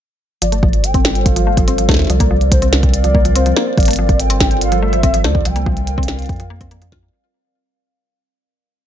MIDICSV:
0, 0, Header, 1, 6, 480
1, 0, Start_track
1, 0, Tempo, 419580
1, 479, Time_signature, 4, 2, 24, 8
1, 10137, End_track
2, 0, Start_track
2, 0, Title_t, "Soft synth lead"
2, 0, Program_c, 0, 80
2, 479, Note_on_c, 0, 74, 105
2, 959, Note_on_c, 0, 79, 107
2, 977, Note_off_c, 0, 74, 0
2, 1439, Note_on_c, 0, 77, 106
2, 1456, Note_off_c, 0, 79, 0
2, 2158, Note_on_c, 0, 76, 95
2, 2175, Note_off_c, 0, 77, 0
2, 2399, Note_on_c, 0, 74, 104
2, 2416, Note_off_c, 0, 76, 0
2, 2880, Note_on_c, 0, 72, 95
2, 2897, Note_off_c, 0, 74, 0
2, 3120, Note_on_c, 0, 74, 102
2, 3137, Note_off_c, 0, 72, 0
2, 3839, Note_on_c, 0, 72, 91
2, 3856, Note_off_c, 0, 74, 0
2, 4313, Note_off_c, 0, 72, 0
2, 4320, Note_on_c, 0, 74, 99
2, 4799, Note_on_c, 0, 79, 106
2, 4817, Note_off_c, 0, 74, 0
2, 5281, Note_on_c, 0, 77, 96
2, 5298, Note_off_c, 0, 79, 0
2, 5514, Note_off_c, 0, 77, 0
2, 5521, Note_on_c, 0, 76, 102
2, 6000, Note_on_c, 0, 74, 91
2, 6018, Note_off_c, 0, 76, 0
2, 6241, Note_on_c, 0, 79, 104
2, 6258, Note_off_c, 0, 74, 0
2, 7920, Note_off_c, 0, 79, 0
2, 10137, End_track
3, 0, Start_track
3, 0, Title_t, "Ambient pad"
3, 0, Program_c, 1, 92
3, 480, Note_on_c, 1, 55, 79
3, 480, Note_on_c, 1, 69, 72
3, 481, Note_on_c, 1, 65, 74
3, 481, Note_on_c, 1, 72, 85
3, 2380, Note_off_c, 1, 55, 0
3, 2381, Note_off_c, 1, 65, 0
3, 2381, Note_off_c, 1, 69, 0
3, 2381, Note_off_c, 1, 72, 0
3, 2399, Note_on_c, 1, 74, 73
3, 2400, Note_on_c, 1, 60, 78
3, 2400, Note_on_c, 1, 70, 69
3, 2400, Note_on_c, 1, 77, 87
3, 4300, Note_off_c, 1, 60, 0
3, 4300, Note_off_c, 1, 70, 0
3, 4300, Note_off_c, 1, 74, 0
3, 4300, Note_off_c, 1, 77, 0
3, 4319, Note_on_c, 1, 55, 78
3, 4319, Note_on_c, 1, 65, 74
3, 4319, Note_on_c, 1, 69, 72
3, 4319, Note_on_c, 1, 72, 84
3, 6220, Note_off_c, 1, 55, 0
3, 6220, Note_off_c, 1, 65, 0
3, 6220, Note_off_c, 1, 69, 0
3, 6220, Note_off_c, 1, 72, 0
3, 6239, Note_on_c, 1, 60, 79
3, 6239, Note_on_c, 1, 70, 73
3, 6239, Note_on_c, 1, 74, 72
3, 6239, Note_on_c, 1, 77, 91
3, 8140, Note_off_c, 1, 60, 0
3, 8140, Note_off_c, 1, 70, 0
3, 8140, Note_off_c, 1, 74, 0
3, 8140, Note_off_c, 1, 77, 0
3, 10137, End_track
4, 0, Start_track
4, 0, Title_t, "Synth arpeggio sound"
4, 0, Program_c, 2, 84
4, 480, Note_on_c, 2, 53, 82
4, 535, Note_off_c, 2, 53, 0
4, 599, Note_on_c, 2, 57, 75
4, 654, Note_off_c, 2, 57, 0
4, 719, Note_on_c, 2, 53, 76
4, 774, Note_off_c, 2, 53, 0
4, 1080, Note_on_c, 2, 60, 74
4, 1172, Note_off_c, 2, 60, 0
4, 1559, Note_on_c, 2, 53, 79
4, 1615, Note_off_c, 2, 53, 0
4, 1680, Note_on_c, 2, 57, 76
4, 1735, Note_off_c, 2, 57, 0
4, 1799, Note_on_c, 2, 53, 71
4, 1891, Note_off_c, 2, 53, 0
4, 1920, Note_on_c, 2, 60, 79
4, 2033, Note_off_c, 2, 60, 0
4, 2039, Note_on_c, 2, 53, 75
4, 2131, Note_off_c, 2, 53, 0
4, 2159, Note_on_c, 2, 57, 101
4, 2251, Note_off_c, 2, 57, 0
4, 2399, Note_on_c, 2, 53, 79
4, 2454, Note_off_c, 2, 53, 0
4, 2519, Note_on_c, 2, 58, 80
4, 2574, Note_off_c, 2, 58, 0
4, 2639, Note_on_c, 2, 53, 74
4, 2694, Note_off_c, 2, 53, 0
4, 2999, Note_on_c, 2, 60, 78
4, 3091, Note_off_c, 2, 60, 0
4, 3479, Note_on_c, 2, 53, 78
4, 3535, Note_off_c, 2, 53, 0
4, 3599, Note_on_c, 2, 58, 76
4, 3654, Note_off_c, 2, 58, 0
4, 3719, Note_on_c, 2, 53, 75
4, 3811, Note_off_c, 2, 53, 0
4, 3839, Note_on_c, 2, 60, 78
4, 3953, Note_off_c, 2, 60, 0
4, 3960, Note_on_c, 2, 53, 81
4, 4051, Note_off_c, 2, 53, 0
4, 4080, Note_on_c, 2, 58, 100
4, 4171, Note_off_c, 2, 58, 0
4, 4319, Note_on_c, 2, 53, 79
4, 4375, Note_off_c, 2, 53, 0
4, 4440, Note_on_c, 2, 57, 76
4, 4495, Note_off_c, 2, 57, 0
4, 4560, Note_on_c, 2, 53, 79
4, 4615, Note_off_c, 2, 53, 0
4, 4920, Note_on_c, 2, 60, 76
4, 5012, Note_off_c, 2, 60, 0
4, 5400, Note_on_c, 2, 53, 77
4, 5455, Note_off_c, 2, 53, 0
4, 5519, Note_on_c, 2, 57, 74
4, 5574, Note_off_c, 2, 57, 0
4, 5640, Note_on_c, 2, 53, 76
4, 5732, Note_off_c, 2, 53, 0
4, 5759, Note_on_c, 2, 60, 80
4, 5873, Note_off_c, 2, 60, 0
4, 5879, Note_on_c, 2, 53, 79
4, 5971, Note_off_c, 2, 53, 0
4, 5999, Note_on_c, 2, 57, 102
4, 6091, Note_off_c, 2, 57, 0
4, 6239, Note_on_c, 2, 53, 81
4, 6294, Note_off_c, 2, 53, 0
4, 6359, Note_on_c, 2, 58, 74
4, 6414, Note_off_c, 2, 58, 0
4, 6479, Note_on_c, 2, 53, 79
4, 6535, Note_off_c, 2, 53, 0
4, 6839, Note_on_c, 2, 60, 76
4, 6931, Note_off_c, 2, 60, 0
4, 7319, Note_on_c, 2, 53, 79
4, 7374, Note_off_c, 2, 53, 0
4, 7439, Note_on_c, 2, 58, 100
4, 7494, Note_off_c, 2, 58, 0
4, 7559, Note_on_c, 2, 60, 74
4, 7651, Note_off_c, 2, 60, 0
4, 7679, Note_on_c, 2, 58, 81
4, 7793, Note_off_c, 2, 58, 0
4, 7800, Note_on_c, 2, 53, 77
4, 7913, Note_off_c, 2, 53, 0
4, 7920, Note_on_c, 2, 65, 77
4, 7975, Note_off_c, 2, 65, 0
4, 10137, End_track
5, 0, Start_track
5, 0, Title_t, "Sub bass"
5, 0, Program_c, 3, 38
5, 479, Note_on_c, 3, 31, 93
5, 2159, Note_on_c, 3, 38, 98
5, 2176, Note_off_c, 3, 31, 0
5, 2355, Note_off_c, 3, 38, 0
5, 2398, Note_on_c, 3, 36, 95
5, 4043, Note_off_c, 3, 36, 0
5, 4319, Note_on_c, 3, 31, 98
5, 5999, Note_on_c, 3, 38, 107
5, 6016, Note_off_c, 3, 31, 0
5, 6195, Note_off_c, 3, 38, 0
5, 6239, Note_on_c, 3, 36, 93
5, 7192, Note_off_c, 3, 36, 0
5, 7199, Note_on_c, 3, 41, 91
5, 8123, Note_off_c, 3, 41, 0
5, 10137, End_track
6, 0, Start_track
6, 0, Title_t, "Drums"
6, 479, Note_on_c, 9, 42, 78
6, 594, Note_off_c, 9, 42, 0
6, 599, Note_on_c, 9, 42, 53
6, 713, Note_off_c, 9, 42, 0
6, 719, Note_on_c, 9, 36, 112
6, 833, Note_off_c, 9, 36, 0
6, 839, Note_on_c, 9, 42, 38
6, 953, Note_off_c, 9, 42, 0
6, 959, Note_on_c, 9, 42, 81
6, 1074, Note_off_c, 9, 42, 0
6, 1079, Note_on_c, 9, 36, 94
6, 1079, Note_on_c, 9, 42, 51
6, 1193, Note_off_c, 9, 36, 0
6, 1194, Note_off_c, 9, 42, 0
6, 1199, Note_on_c, 9, 38, 113
6, 1314, Note_off_c, 9, 38, 0
6, 1320, Note_on_c, 9, 42, 36
6, 1434, Note_off_c, 9, 42, 0
6, 1439, Note_on_c, 9, 36, 114
6, 1440, Note_on_c, 9, 42, 78
6, 1553, Note_off_c, 9, 36, 0
6, 1554, Note_off_c, 9, 42, 0
6, 1560, Note_on_c, 9, 42, 56
6, 1674, Note_off_c, 9, 42, 0
6, 1799, Note_on_c, 9, 36, 97
6, 1799, Note_on_c, 9, 42, 38
6, 1913, Note_off_c, 9, 36, 0
6, 1914, Note_off_c, 9, 42, 0
6, 1919, Note_on_c, 9, 42, 78
6, 2033, Note_off_c, 9, 42, 0
6, 2040, Note_on_c, 9, 42, 53
6, 2154, Note_off_c, 9, 42, 0
6, 2159, Note_on_c, 9, 36, 116
6, 2159, Note_on_c, 9, 38, 116
6, 2190, Note_off_c, 9, 38, 0
6, 2190, Note_on_c, 9, 38, 91
6, 2220, Note_off_c, 9, 38, 0
6, 2220, Note_on_c, 9, 38, 78
6, 2249, Note_off_c, 9, 38, 0
6, 2249, Note_on_c, 9, 38, 61
6, 2273, Note_off_c, 9, 36, 0
6, 2279, Note_off_c, 9, 38, 0
6, 2279, Note_on_c, 9, 38, 51
6, 2309, Note_off_c, 9, 38, 0
6, 2309, Note_on_c, 9, 38, 42
6, 2339, Note_off_c, 9, 38, 0
6, 2339, Note_on_c, 9, 38, 34
6, 2369, Note_off_c, 9, 38, 0
6, 2369, Note_on_c, 9, 38, 28
6, 2400, Note_on_c, 9, 42, 79
6, 2484, Note_off_c, 9, 38, 0
6, 2514, Note_off_c, 9, 42, 0
6, 2519, Note_on_c, 9, 36, 101
6, 2519, Note_on_c, 9, 42, 53
6, 2633, Note_off_c, 9, 36, 0
6, 2633, Note_off_c, 9, 42, 0
6, 2759, Note_on_c, 9, 42, 37
6, 2874, Note_off_c, 9, 42, 0
6, 2879, Note_on_c, 9, 36, 118
6, 2879, Note_on_c, 9, 42, 81
6, 2993, Note_off_c, 9, 36, 0
6, 2994, Note_off_c, 9, 42, 0
6, 2999, Note_on_c, 9, 42, 52
6, 3114, Note_off_c, 9, 42, 0
6, 3119, Note_on_c, 9, 38, 115
6, 3234, Note_off_c, 9, 38, 0
6, 3239, Note_on_c, 9, 36, 100
6, 3239, Note_on_c, 9, 42, 37
6, 3353, Note_off_c, 9, 36, 0
6, 3354, Note_off_c, 9, 42, 0
6, 3359, Note_on_c, 9, 42, 82
6, 3473, Note_off_c, 9, 42, 0
6, 3479, Note_on_c, 9, 42, 57
6, 3594, Note_off_c, 9, 42, 0
6, 3599, Note_on_c, 9, 36, 119
6, 3713, Note_off_c, 9, 36, 0
6, 3719, Note_on_c, 9, 42, 39
6, 3834, Note_off_c, 9, 42, 0
6, 3839, Note_on_c, 9, 42, 78
6, 3953, Note_off_c, 9, 42, 0
6, 3958, Note_on_c, 9, 42, 53
6, 4073, Note_off_c, 9, 42, 0
6, 4079, Note_on_c, 9, 38, 127
6, 4193, Note_off_c, 9, 38, 0
6, 4319, Note_on_c, 9, 36, 126
6, 4319, Note_on_c, 9, 42, 35
6, 4349, Note_off_c, 9, 42, 0
6, 4349, Note_on_c, 9, 42, 38
6, 4379, Note_off_c, 9, 42, 0
6, 4379, Note_on_c, 9, 42, 43
6, 4410, Note_off_c, 9, 42, 0
6, 4410, Note_on_c, 9, 42, 48
6, 4433, Note_off_c, 9, 36, 0
6, 4439, Note_off_c, 9, 42, 0
6, 4439, Note_on_c, 9, 42, 55
6, 4469, Note_off_c, 9, 42, 0
6, 4469, Note_on_c, 9, 42, 59
6, 4500, Note_off_c, 9, 42, 0
6, 4500, Note_on_c, 9, 42, 63
6, 4529, Note_off_c, 9, 42, 0
6, 4529, Note_on_c, 9, 42, 66
6, 4644, Note_off_c, 9, 42, 0
6, 4679, Note_on_c, 9, 36, 110
6, 4680, Note_on_c, 9, 42, 37
6, 4793, Note_off_c, 9, 36, 0
6, 4794, Note_off_c, 9, 42, 0
6, 4800, Note_on_c, 9, 42, 78
6, 4914, Note_off_c, 9, 42, 0
6, 4919, Note_on_c, 9, 42, 52
6, 5034, Note_off_c, 9, 42, 0
6, 5039, Note_on_c, 9, 36, 119
6, 5039, Note_on_c, 9, 38, 123
6, 5153, Note_off_c, 9, 36, 0
6, 5153, Note_off_c, 9, 38, 0
6, 5159, Note_on_c, 9, 42, 36
6, 5274, Note_off_c, 9, 42, 0
6, 5279, Note_on_c, 9, 42, 81
6, 5393, Note_off_c, 9, 42, 0
6, 5399, Note_on_c, 9, 42, 55
6, 5514, Note_off_c, 9, 42, 0
6, 5639, Note_on_c, 9, 42, 38
6, 5754, Note_off_c, 9, 42, 0
6, 5759, Note_on_c, 9, 36, 127
6, 5759, Note_on_c, 9, 42, 80
6, 5873, Note_off_c, 9, 36, 0
6, 5874, Note_off_c, 9, 42, 0
6, 5879, Note_on_c, 9, 42, 55
6, 5994, Note_off_c, 9, 42, 0
6, 5999, Note_on_c, 9, 38, 127
6, 6113, Note_off_c, 9, 38, 0
6, 6119, Note_on_c, 9, 36, 110
6, 6233, Note_off_c, 9, 36, 0
6, 6239, Note_on_c, 9, 42, 73
6, 6353, Note_off_c, 9, 42, 0
6, 6359, Note_on_c, 9, 42, 50
6, 6473, Note_off_c, 9, 42, 0
6, 6479, Note_on_c, 9, 36, 121
6, 6593, Note_off_c, 9, 36, 0
6, 6599, Note_on_c, 9, 42, 35
6, 6713, Note_off_c, 9, 42, 0
6, 6719, Note_on_c, 9, 42, 75
6, 6833, Note_off_c, 9, 42, 0
6, 6839, Note_on_c, 9, 36, 107
6, 6899, Note_on_c, 9, 42, 51
6, 6953, Note_off_c, 9, 36, 0
6, 6958, Note_on_c, 9, 38, 115
6, 7013, Note_off_c, 9, 42, 0
6, 7073, Note_off_c, 9, 38, 0
6, 7079, Note_on_c, 9, 42, 34
6, 7119, Note_off_c, 9, 42, 0
6, 7119, Note_on_c, 9, 42, 28
6, 7159, Note_off_c, 9, 42, 0
6, 7159, Note_on_c, 9, 42, 23
6, 7199, Note_off_c, 9, 42, 0
6, 7199, Note_on_c, 9, 36, 124
6, 7199, Note_on_c, 9, 42, 19
6, 7239, Note_off_c, 9, 42, 0
6, 7239, Note_on_c, 9, 42, 15
6, 7279, Note_off_c, 9, 42, 0
6, 7279, Note_on_c, 9, 42, 13
6, 7313, Note_off_c, 9, 36, 0
6, 7319, Note_off_c, 9, 42, 0
6, 7319, Note_on_c, 9, 42, 54
6, 7433, Note_off_c, 9, 42, 0
6, 7559, Note_on_c, 9, 36, 102
6, 7559, Note_on_c, 9, 42, 37
6, 7673, Note_off_c, 9, 36, 0
6, 7673, Note_off_c, 9, 42, 0
6, 7679, Note_on_c, 9, 42, 75
6, 7793, Note_off_c, 9, 42, 0
6, 7799, Note_on_c, 9, 42, 52
6, 7913, Note_off_c, 9, 42, 0
6, 7918, Note_on_c, 9, 36, 120
6, 7919, Note_on_c, 9, 38, 120
6, 8033, Note_off_c, 9, 36, 0
6, 8033, Note_off_c, 9, 38, 0
6, 10137, End_track
0, 0, End_of_file